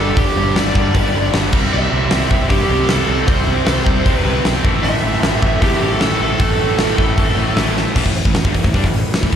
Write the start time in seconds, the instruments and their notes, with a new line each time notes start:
Already playing: picked electric bass G1, distorted electric guitar G2 D3, analog synth pad G4 D5 B5, lead electric guitar A4
0.00 distorted electric guitar G3 B3 D4
0.17 picked electric bass G1, distorted electric guitar G2 D3 G3, lead electric guitar G4, kick, open hi-hat
0.36 picked electric bass G1, distorted electric guitar G2 D3 G3
0.55 picked electric bass G1, distorted electric guitar G2 D3 G3, lead electric guitar D5, snare, open hi-hat
0.75 picked electric bass G1, distorted electric guitar G2 D3 G3, kick
0.94 picked electric bass G1, distorted electric guitar G2 D3 G3 B3 D4, kick, open hi-hat
1.14 picked electric bass G1, distorted electric guitar G2 D3 G3 B3 D4
1.32 picked electric bass G1, distorted electric guitar G2 D3 G3, snare, open hi-hat
1.51 picked electric bass C2, distorted electric guitar C3 G3 C4, analog synth pad E5 C6, kick, crash
1.55 distorted electric guitar E4
1.71 picked electric bass C2, distorted electric guitar C3 G3 C4, lead electric guitar E5
1.91 picked electric bass C2, distorted electric guitar C3 G3 C4
2.11 picked electric bass C2, distorted electric guitar C3 G3 C4, snare, open hi-hat
2.30 picked electric bass C2, distorted electric guitar C3 G3 C4, kick
2.49 picked electric bass G2, distorted electric guitar C3 G3 C4 E4, lead electric guitar G4, kick, open hi-hat
2.70 picked electric bass C2, distorted electric guitar C3 G3 C4 E4
2.88 picked electric bass C2, distorted electric guitar C3 G3 C4, lead electric guitar A4, snare, open hi-hat
3.08 picked electric bass C2, distorted electric guitar C3 G3 C4 E4
3.27 picked electric bass C2, distorted electric guitar C3 G3 C4, lead electric guitar C5, kick, open hi-hat
3.46 picked electric bass C2, distorted electric guitar C3 G3 C4
3.66 picked electric bass C2, distorted electric guitar C3 G3 C4, lead electric guitar C5, snare, open hi-hat
3.85 picked electric bass C2, distorted electric guitar C3 G3 C4, kick
4.05 picked electric bass C2, distorted electric guitar C3 G3 C4 E4, kick, open hi-hat
4.17 lead electric guitar B4
4.24 picked electric bass C2, distorted electric guitar C3 G3 C4 E4
4.44 picked electric bass B1, distorted electric guitar C3 G3 C4, snare, open hi-hat
4.64 picked electric bass A1, distorted electric guitar A2 E3 A3 C4 E4, analog synth pad A4 E5, kick
4.83 picked electric bass A1, distorted electric guitar A2 E3 A3, lead electric guitar E5, open hi-hat
5.03 picked electric bass A1, distorted electric guitar A2 E3 A3
5.22 picked electric bass A1, distorted electric guitar A2 E3 A3, snare, open hi-hat
5.41 picked electric bass A1, distorted electric guitar A2 E3 A3, kick
5.61 picked electric bass E2, distorted electric guitar A2 E3 A3 C4 E4, lead electric guitar G4, kick, open hi-hat
5.81 picked electric bass A1, distorted electric guitar A2 E3 A3 C4 E4
5.92 lead electric guitar A4
6.00 picked electric bass A1, distorted electric guitar A2 E3 A3, snare, open hi-hat
6.19 picked electric bass A1, distorted electric guitar A2 E3 A3 C4 E4, lead electric guitar A4
6.39 picked electric bass A1, distorted electric guitar A2 E3 A3, kick, open hi-hat
6.59 picked electric bass A1, distorted electric guitar A2 E3 A3
6.78 picked electric bass A1, distorted electric guitar A2 E3 A3, snare, open hi-hat
6.97 picked electric bass A1, distorted electric guitar A2 E3 A3, kick
7.17 picked electric bass A1, distorted electric guitar A2 E3 A3 C4 E4, kick, open hi-hat
7.37 picked electric bass A1, distorted electric guitar A2 E3 A3 C4 E4
7.56 picked electric bass A1, distorted electric guitar A2 E3 A3, snare, open hi-hat
7.76 distorted electric guitar A2 E3 A3, snare
7.96 picked electric bass A1, distorted electric guitar A2 E3, analog synth pad A3 E4 B4, kick, crash
8.05 picked electric bass A1, distorted electric guitar A2 E3, kick
8.15 open hi-hat
8.25 picked electric bass A1, distorted electric guitar A2 E3, kick
8.34 snare, open hi-hat
8.45 picked electric bass G1, distorted electric guitar G2 D3, kick
8.54 picked electric bass A1, distorted electric guitar A2 E3, kick, open hi-hat
8.64 picked electric bass A1, distorted electric guitar A2 E3, kick, snare
8.74 picked electric bass G2, distorted electric guitar G3 D4, kick, open hi-hat
8.84 picked electric bass A1, distorted electric guitar A2 E3, kick, snare
8.93 open hi-hat
9.14 snare, open hi-hat
9.22 picked electric bass A1, distorted electric guitar A2 E3, kick
9.31 distorted electric guitar A2 E3, kick, open hi-hat